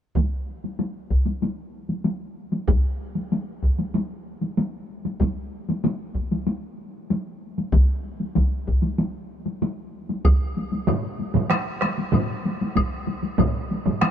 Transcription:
0.16 taiko, taiko high
0.64 taiko high
0.79 taiko high
1.11 taiko
1.26 taiko high
1.42 taiko high
1.89 taiko high
2.04 taiko high
2.52 taiko high
2.68 taiko, taiko high
3.15 taiko high
3.32 taiko high
3.63 taiko
3.79 taiko high
3.95 taiko high
4.41 taiko high
4.58 taiko high
5.05 taiko high
5.20 taiko, taiko high
5.69 taiko high
5.84 taiko high
6.15 taiko
6.32 taiko high
6.47 taiko high
7.10 taiko high
7.58 taiko high
7.72 taiko, taiko high
8.20 taiko high
8.35 taiko, taiko high
8.68 taiko
8.83 taiko high
8.98 taiko high
9.46 taiko high
9.62 taiko high
10.09 taiko high
10.25 taiko, taiko high, high woodblock
10.57 taiko high
10.72 taiko high
10.88 taiko low-mid, taiko mid, taiko high, high woodblock
11.19 taiko high
11.34 taiko low-mid, taiko mid, taiko high
11.50 taiko rim, taiko high, high woodblock
11.81 taiko rim, taiko high
11.99 taiko high
12.12 taiko low-mid, taiko mid, taiko high, high woodblock
12.45 taiko high
12.61 taiko high
12.76 taiko, taiko high, high woodblock
13.07 taiko high
13.23 taiko high
13.38 taiko, taiko low-mid, taiko mid, taiko high, high woodblock
13.71 taiko high
13.86 taiko low-mid, taiko mid, taiko high
14.01 taiko rim, taiko high, high woodblock

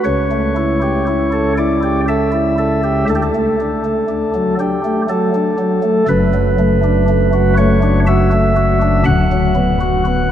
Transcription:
0.05 C#2 C#3 C#5
0.31 A3
0.56 E4
0.82 G4
1.07 E4
1.32 A4
1.58 E4 D5
1.83 G4
2.08 A4 E5
2.32 E4
2.58 A4
2.84 G4
3.09 D2 D3 A4
3.15 G4
3.22 A4
3.35 A3
3.60 D4
3.84 A3
4.09 D4
4.35 F#3
4.59 D4 G4
4.85 A3
5.09 F#3 A4
5.35 D4
5.58 F#3
5.83 A3
6.08 F#1 F#2 B4
6.34 F#3
6.59 A3
6.84 D4
7.08 A3
7.33 F#4
7.58 A3 C#5
7.83 D4
8.07 F#4 E5
8.32 A3
8.56 F#4
8.82 D4
9.05 D1 D2 F#5
9.32 F#3
9.55 B3
9.81 F#4
10.06 B3

